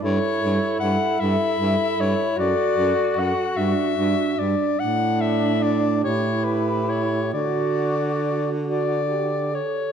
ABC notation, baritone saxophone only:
X:1
M:6/8
L:1/8
Q:3/8=49
K:D
V:1 name="Baritone saxophone" clef=bass
G,, G,, G,, G,, G,, G,, | F,, F,, F,, G,, G,, G,, | A,,3 A,,3 | D,4- D, z |]